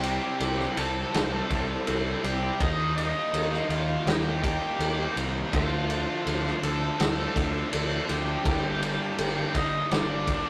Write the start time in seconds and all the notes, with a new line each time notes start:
Already playing: C2 C3 G3 C4 G4 G5
0.02 C3 G3 C4 E4, ride
0.21 G3 C4 E4
0.40 C2, ride
0.57 C3 G3 C4 E4, snare
0.76 C2 C3 G3 C4 E4 A4 A5, ride
0.94 G3 C4 E4
1.12 C2 C3 G3 C4, snare, ride
1.30 G3 C4 E4
1.48 C2 C3 G3 C4 E4, kick, ride
1.68 G3 C4 E4
1.85 C2 C3 G3 C4 E4, ride
2.23 C2 C3 G3 C4 E4 G4 G5, ride
2.40 G3 C4 E4
2.59 D#2 D#3 G3 A#3 D#4 D#5, kick, ride
2.95 D#3 G3 A#3 D#4 D#5, ride
3.14 G3 A#3 D#4
3.33 D#2, ride
3.50 D#3 G3 A#3 D#4, snare
3.69 D#2 D#3 G3 A#3 D#4 F4 F5, ride
3.87 G3 A#3 D#4
4.05 D#2 D#3 A#3 D#4 G4 G5, snare, ride
4.23 G3 A#3 D#4
4.41 D#3 G3 A#3 D#4 G4 G5, kick, ride
4.60 G3 A#3 D#4
4.79 D#2 D#3 G3 A#3 D#4, ride
5.15 C2 D#3 G3 A#3 D#4, ride
5.34 G3 A#3 D#4
5.51 D2 D3 F3 A3 D4 F4 F5, kick, ride
5.55 D4
5.88 D3 F3 A3 D4, ride
6.06 F3 A3 D4
6.26 D2, ride
6.43 D3 F3 A3 D4, snare
6.62 D2 D3 F3 A3 D4 A4 A5, ride
6.80 F3 A3 D4
6.98 D2 D3 A3 D4, snare, ride
7.17 F3 A3 D4
7.35 D2 D3 F3 A3 D4, kick, ride
7.53 F3 A3 D4
7.70 D2 D3 F3 A3 D4, ride
8.06 D2 D3 F3 A3 D4 G4, ride
8.10 G5
8.24 F3 A3 D4
8.42 G1 G2 D3 G3 A#3 D4, kick, ride
8.46 D3 G3
8.80 D3 G3 A#3 D4, ride
8.97 G3 A#3 D4
9.18 G1, ride
9.34 G2 D3 G3 A#3 D4
9.52 G1 D3 G3 A#3 D4 D#4, kick, ride
9.56 D#5
9.69 G3 A#3 D4
9.90 G1 G2 D3 G3 D4 D5, snare, ride
10.07 G3 A#3 D4
10.25 D3 G3 A#3 D4, kick, ride
10.43 G3 A#3 D4